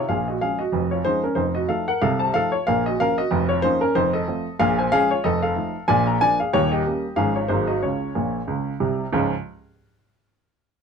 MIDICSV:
0, 0, Header, 1, 2, 480
1, 0, Start_track
1, 0, Key_signature, -5, "major"
1, 0, Tempo, 322407
1, 128, Time_signature, 4, 2, 24, 8
1, 16112, End_track
2, 0, Start_track
2, 0, Title_t, "Upright piano"
2, 0, Program_c, 0, 0
2, 127, Note_on_c, 0, 77, 91
2, 132, Note_on_c, 0, 34, 67
2, 138, Note_on_c, 0, 46, 69
2, 152, Note_on_c, 0, 68, 65
2, 367, Note_off_c, 0, 77, 0
2, 402, Note_off_c, 0, 68, 0
2, 416, Note_on_c, 0, 75, 61
2, 441, Note_on_c, 0, 66, 55
2, 539, Note_off_c, 0, 34, 0
2, 542, Note_off_c, 0, 46, 0
2, 582, Note_off_c, 0, 75, 0
2, 611, Note_off_c, 0, 66, 0
2, 616, Note_on_c, 0, 56, 40
2, 617, Note_on_c, 0, 77, 92
2, 620, Note_on_c, 0, 53, 39
2, 625, Note_on_c, 0, 68, 65
2, 626, Note_on_c, 0, 61, 42
2, 852, Note_off_c, 0, 77, 0
2, 872, Note_on_c, 0, 75, 71
2, 878, Note_off_c, 0, 56, 0
2, 879, Note_off_c, 0, 68, 0
2, 881, Note_off_c, 0, 53, 0
2, 885, Note_off_c, 0, 61, 0
2, 898, Note_on_c, 0, 66, 59
2, 1075, Note_on_c, 0, 29, 74
2, 1083, Note_on_c, 0, 41, 71
2, 1288, Note_off_c, 0, 75, 0
2, 1340, Note_off_c, 0, 66, 0
2, 1356, Note_on_c, 0, 73, 64
2, 1378, Note_on_c, 0, 65, 57
2, 1489, Note_off_c, 0, 29, 0
2, 1493, Note_off_c, 0, 41, 0
2, 1531, Note_off_c, 0, 73, 0
2, 1557, Note_on_c, 0, 72, 103
2, 1559, Note_off_c, 0, 65, 0
2, 1562, Note_on_c, 0, 53, 57
2, 1572, Note_on_c, 0, 56, 55
2, 1575, Note_on_c, 0, 61, 54
2, 1578, Note_on_c, 0, 63, 73
2, 1801, Note_off_c, 0, 72, 0
2, 1828, Note_off_c, 0, 53, 0
2, 1835, Note_off_c, 0, 56, 0
2, 1835, Note_off_c, 0, 63, 0
2, 1837, Note_off_c, 0, 61, 0
2, 1840, Note_on_c, 0, 70, 66
2, 1859, Note_on_c, 0, 61, 60
2, 2013, Note_off_c, 0, 70, 0
2, 2013, Note_on_c, 0, 72, 83
2, 2014, Note_on_c, 0, 29, 70
2, 2023, Note_on_c, 0, 41, 72
2, 2037, Note_on_c, 0, 63, 70
2, 2039, Note_off_c, 0, 61, 0
2, 2267, Note_off_c, 0, 72, 0
2, 2302, Note_on_c, 0, 75, 78
2, 2304, Note_off_c, 0, 63, 0
2, 2317, Note_on_c, 0, 66, 57
2, 2437, Note_off_c, 0, 29, 0
2, 2441, Note_off_c, 0, 41, 0
2, 2483, Note_off_c, 0, 75, 0
2, 2503, Note_on_c, 0, 53, 43
2, 2507, Note_off_c, 0, 66, 0
2, 2511, Note_on_c, 0, 77, 87
2, 2515, Note_on_c, 0, 57, 50
2, 2519, Note_on_c, 0, 69, 65
2, 2524, Note_on_c, 0, 63, 45
2, 2757, Note_off_c, 0, 77, 0
2, 2773, Note_off_c, 0, 53, 0
2, 2782, Note_off_c, 0, 57, 0
2, 2785, Note_off_c, 0, 69, 0
2, 2789, Note_off_c, 0, 63, 0
2, 2798, Note_on_c, 0, 78, 87
2, 2811, Note_on_c, 0, 70, 64
2, 2971, Note_off_c, 0, 78, 0
2, 2995, Note_off_c, 0, 70, 0
2, 3000, Note_on_c, 0, 77, 100
2, 3004, Note_on_c, 0, 36, 85
2, 3011, Note_on_c, 0, 48, 75
2, 3020, Note_on_c, 0, 69, 80
2, 3242, Note_off_c, 0, 77, 0
2, 3266, Note_on_c, 0, 81, 82
2, 3276, Note_off_c, 0, 69, 0
2, 3276, Note_on_c, 0, 72, 54
2, 3414, Note_off_c, 0, 36, 0
2, 3417, Note_off_c, 0, 48, 0
2, 3445, Note_off_c, 0, 81, 0
2, 3467, Note_off_c, 0, 72, 0
2, 3481, Note_on_c, 0, 77, 112
2, 3489, Note_on_c, 0, 53, 64
2, 3491, Note_on_c, 0, 57, 59
2, 3503, Note_on_c, 0, 63, 60
2, 3506, Note_on_c, 0, 69, 88
2, 3723, Note_off_c, 0, 77, 0
2, 3750, Note_on_c, 0, 73, 86
2, 3753, Note_off_c, 0, 53, 0
2, 3754, Note_off_c, 0, 57, 0
2, 3759, Note_off_c, 0, 69, 0
2, 3763, Note_off_c, 0, 63, 0
2, 3774, Note_on_c, 0, 65, 53
2, 3927, Note_off_c, 0, 73, 0
2, 3956, Note_off_c, 0, 65, 0
2, 3971, Note_on_c, 0, 77, 108
2, 3977, Note_on_c, 0, 46, 82
2, 3981, Note_on_c, 0, 34, 81
2, 3990, Note_on_c, 0, 70, 67
2, 4209, Note_off_c, 0, 77, 0
2, 4241, Note_off_c, 0, 70, 0
2, 4260, Note_on_c, 0, 75, 87
2, 4280, Note_on_c, 0, 66, 63
2, 4381, Note_off_c, 0, 46, 0
2, 4383, Note_off_c, 0, 34, 0
2, 4424, Note_off_c, 0, 75, 0
2, 4451, Note_off_c, 0, 66, 0
2, 4467, Note_on_c, 0, 53, 53
2, 4468, Note_on_c, 0, 77, 111
2, 4478, Note_on_c, 0, 58, 50
2, 4481, Note_on_c, 0, 61, 57
2, 4486, Note_on_c, 0, 70, 84
2, 4698, Note_off_c, 0, 77, 0
2, 4725, Note_off_c, 0, 53, 0
2, 4730, Note_off_c, 0, 70, 0
2, 4733, Note_off_c, 0, 58, 0
2, 4734, Note_on_c, 0, 75, 101
2, 4736, Note_off_c, 0, 61, 0
2, 4750, Note_on_c, 0, 66, 65
2, 4925, Note_on_c, 0, 41, 85
2, 4935, Note_on_c, 0, 29, 96
2, 5140, Note_off_c, 0, 75, 0
2, 5187, Note_off_c, 0, 66, 0
2, 5193, Note_on_c, 0, 73, 91
2, 5215, Note_on_c, 0, 65, 59
2, 5335, Note_off_c, 0, 41, 0
2, 5340, Note_off_c, 0, 29, 0
2, 5369, Note_off_c, 0, 73, 0
2, 5395, Note_on_c, 0, 72, 113
2, 5397, Note_off_c, 0, 65, 0
2, 5400, Note_on_c, 0, 53, 69
2, 5414, Note_on_c, 0, 61, 73
2, 5415, Note_on_c, 0, 58, 64
2, 5416, Note_on_c, 0, 63, 80
2, 5640, Note_off_c, 0, 72, 0
2, 5666, Note_off_c, 0, 53, 0
2, 5666, Note_off_c, 0, 61, 0
2, 5674, Note_off_c, 0, 63, 0
2, 5674, Note_on_c, 0, 70, 93
2, 5677, Note_off_c, 0, 58, 0
2, 5688, Note_on_c, 0, 61, 65
2, 5850, Note_off_c, 0, 70, 0
2, 5873, Note_off_c, 0, 61, 0
2, 5885, Note_on_c, 0, 41, 83
2, 5886, Note_on_c, 0, 29, 75
2, 5886, Note_on_c, 0, 72, 105
2, 5894, Note_on_c, 0, 63, 75
2, 6126, Note_off_c, 0, 72, 0
2, 6153, Note_off_c, 0, 63, 0
2, 6156, Note_on_c, 0, 75, 89
2, 6173, Note_on_c, 0, 69, 65
2, 6295, Note_off_c, 0, 29, 0
2, 6295, Note_off_c, 0, 41, 0
2, 6367, Note_on_c, 0, 57, 52
2, 6370, Note_on_c, 0, 53, 58
2, 6378, Note_on_c, 0, 60, 53
2, 6632, Note_off_c, 0, 57, 0
2, 6634, Note_off_c, 0, 53, 0
2, 6639, Note_off_c, 0, 60, 0
2, 6739, Note_off_c, 0, 75, 0
2, 6803, Note_off_c, 0, 69, 0
2, 6838, Note_on_c, 0, 46, 94
2, 6842, Note_on_c, 0, 77, 118
2, 6844, Note_on_c, 0, 34, 96
2, 6858, Note_on_c, 0, 68, 87
2, 7084, Note_off_c, 0, 77, 0
2, 7115, Note_off_c, 0, 68, 0
2, 7124, Note_on_c, 0, 80, 88
2, 7137, Note_on_c, 0, 72, 75
2, 7251, Note_off_c, 0, 46, 0
2, 7254, Note_off_c, 0, 34, 0
2, 7295, Note_off_c, 0, 80, 0
2, 7319, Note_off_c, 0, 72, 0
2, 7323, Note_on_c, 0, 77, 127
2, 7326, Note_on_c, 0, 53, 63
2, 7327, Note_on_c, 0, 56, 71
2, 7334, Note_on_c, 0, 61, 77
2, 7338, Note_on_c, 0, 68, 109
2, 7565, Note_off_c, 0, 77, 0
2, 7591, Note_off_c, 0, 53, 0
2, 7592, Note_off_c, 0, 56, 0
2, 7595, Note_off_c, 0, 68, 0
2, 7596, Note_off_c, 0, 61, 0
2, 7605, Note_on_c, 0, 73, 87
2, 7626, Note_on_c, 0, 65, 76
2, 7776, Note_off_c, 0, 73, 0
2, 7801, Note_on_c, 0, 75, 100
2, 7804, Note_off_c, 0, 65, 0
2, 7808, Note_on_c, 0, 29, 84
2, 7814, Note_on_c, 0, 41, 84
2, 7823, Note_on_c, 0, 69, 82
2, 8043, Note_off_c, 0, 75, 0
2, 8067, Note_off_c, 0, 69, 0
2, 8076, Note_on_c, 0, 77, 96
2, 8090, Note_on_c, 0, 69, 74
2, 8217, Note_off_c, 0, 29, 0
2, 8220, Note_off_c, 0, 41, 0
2, 8278, Note_on_c, 0, 53, 46
2, 8281, Note_on_c, 0, 57, 53
2, 8291, Note_on_c, 0, 63, 56
2, 8546, Note_off_c, 0, 53, 0
2, 8548, Note_off_c, 0, 57, 0
2, 8555, Note_off_c, 0, 63, 0
2, 8659, Note_off_c, 0, 77, 0
2, 8722, Note_off_c, 0, 69, 0
2, 8751, Note_on_c, 0, 80, 114
2, 8756, Note_on_c, 0, 46, 104
2, 8758, Note_on_c, 0, 34, 92
2, 8772, Note_on_c, 0, 74, 96
2, 8998, Note_off_c, 0, 80, 0
2, 9033, Note_off_c, 0, 74, 0
2, 9036, Note_on_c, 0, 82, 85
2, 9057, Note_on_c, 0, 74, 60
2, 9170, Note_off_c, 0, 46, 0
2, 9171, Note_off_c, 0, 34, 0
2, 9211, Note_off_c, 0, 82, 0
2, 9239, Note_off_c, 0, 74, 0
2, 9246, Note_on_c, 0, 80, 127
2, 9251, Note_on_c, 0, 53, 59
2, 9254, Note_on_c, 0, 58, 60
2, 9256, Note_on_c, 0, 62, 59
2, 9267, Note_on_c, 0, 74, 84
2, 9487, Note_off_c, 0, 80, 0
2, 9515, Note_off_c, 0, 53, 0
2, 9517, Note_off_c, 0, 58, 0
2, 9519, Note_off_c, 0, 62, 0
2, 9521, Note_off_c, 0, 74, 0
2, 9527, Note_on_c, 0, 77, 85
2, 9541, Note_on_c, 0, 68, 66
2, 9698, Note_off_c, 0, 77, 0
2, 9722, Note_off_c, 0, 68, 0
2, 9728, Note_on_c, 0, 39, 95
2, 9729, Note_on_c, 0, 73, 106
2, 9730, Note_on_c, 0, 27, 79
2, 9743, Note_on_c, 0, 67, 66
2, 9969, Note_off_c, 0, 73, 0
2, 9991, Note_off_c, 0, 67, 0
2, 9999, Note_on_c, 0, 75, 80
2, 10013, Note_on_c, 0, 67, 64
2, 10138, Note_off_c, 0, 39, 0
2, 10139, Note_off_c, 0, 27, 0
2, 10218, Note_on_c, 0, 55, 45
2, 10224, Note_on_c, 0, 61, 50
2, 10226, Note_on_c, 0, 58, 51
2, 10480, Note_off_c, 0, 55, 0
2, 10485, Note_off_c, 0, 61, 0
2, 10486, Note_off_c, 0, 58, 0
2, 10582, Note_off_c, 0, 75, 0
2, 10644, Note_off_c, 0, 67, 0
2, 10661, Note_on_c, 0, 32, 69
2, 10664, Note_on_c, 0, 77, 96
2, 10667, Note_on_c, 0, 53, 49
2, 10668, Note_on_c, 0, 44, 83
2, 10677, Note_on_c, 0, 56, 41
2, 10683, Note_on_c, 0, 68, 81
2, 10689, Note_on_c, 0, 61, 46
2, 10915, Note_off_c, 0, 77, 0
2, 10938, Note_off_c, 0, 53, 0
2, 10945, Note_off_c, 0, 56, 0
2, 10949, Note_off_c, 0, 68, 0
2, 10953, Note_on_c, 0, 73, 66
2, 10954, Note_off_c, 0, 61, 0
2, 10964, Note_on_c, 0, 65, 56
2, 11082, Note_off_c, 0, 32, 0
2, 11086, Note_off_c, 0, 44, 0
2, 11130, Note_off_c, 0, 73, 0
2, 11142, Note_on_c, 0, 72, 90
2, 11151, Note_on_c, 0, 44, 81
2, 11152, Note_on_c, 0, 54, 51
2, 11153, Note_off_c, 0, 65, 0
2, 11155, Note_on_c, 0, 32, 81
2, 11158, Note_on_c, 0, 56, 48
2, 11162, Note_on_c, 0, 63, 65
2, 11169, Note_on_c, 0, 58, 55
2, 11394, Note_off_c, 0, 72, 0
2, 11421, Note_off_c, 0, 54, 0
2, 11425, Note_on_c, 0, 75, 74
2, 11426, Note_off_c, 0, 56, 0
2, 11428, Note_off_c, 0, 63, 0
2, 11434, Note_off_c, 0, 58, 0
2, 11447, Note_on_c, 0, 66, 61
2, 11568, Note_off_c, 0, 44, 0
2, 11570, Note_off_c, 0, 32, 0
2, 11606, Note_off_c, 0, 75, 0
2, 11635, Note_off_c, 0, 66, 0
2, 11649, Note_on_c, 0, 73, 69
2, 11650, Note_on_c, 0, 49, 66
2, 11658, Note_on_c, 0, 37, 58
2, 11672, Note_on_c, 0, 65, 55
2, 12059, Note_off_c, 0, 49, 0
2, 12064, Note_off_c, 0, 37, 0
2, 12134, Note_on_c, 0, 46, 70
2, 12139, Note_on_c, 0, 34, 64
2, 12493, Note_off_c, 0, 46, 0
2, 12496, Note_off_c, 0, 34, 0
2, 12617, Note_on_c, 0, 37, 71
2, 12622, Note_on_c, 0, 49, 58
2, 12875, Note_off_c, 0, 73, 0
2, 12975, Note_off_c, 0, 37, 0
2, 12979, Note_off_c, 0, 49, 0
2, 13043, Note_off_c, 0, 65, 0
2, 13103, Note_on_c, 0, 48, 77
2, 13106, Note_on_c, 0, 36, 72
2, 13459, Note_off_c, 0, 48, 0
2, 13461, Note_off_c, 0, 36, 0
2, 13584, Note_on_c, 0, 44, 72
2, 13586, Note_on_c, 0, 37, 97
2, 13595, Note_on_c, 0, 53, 87
2, 13598, Note_on_c, 0, 61, 82
2, 13599, Note_on_c, 0, 65, 73
2, 13601, Note_on_c, 0, 56, 78
2, 13877, Note_off_c, 0, 44, 0
2, 13878, Note_off_c, 0, 37, 0
2, 13883, Note_off_c, 0, 53, 0
2, 13884, Note_off_c, 0, 61, 0
2, 13885, Note_off_c, 0, 65, 0
2, 13886, Note_off_c, 0, 56, 0
2, 16112, End_track
0, 0, End_of_file